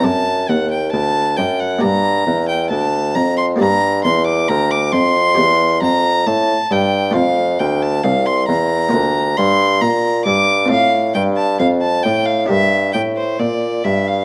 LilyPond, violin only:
\new Staff \with { instrumentName = "Violin" } { \time 4/4 \key g \dorian \tempo 4 = 68 a''8 fis''16 g''16 a''8 g''16 fis''16 bes''8. g''16 a''8 bes''16 c'''16 | bes''8 c'''16 d'''16 bes''16 d'''16 c'''4 bes''8 a''8 g''8 | f''8 g''16 a''16 f''16 c'''16 bes''4 c'''8 bes''8 d'''8 | f''8 g''16 a''16 f''16 a''16 g''16 f''16 e''8 g''16 c''16 d''8 e''16 f''16 | }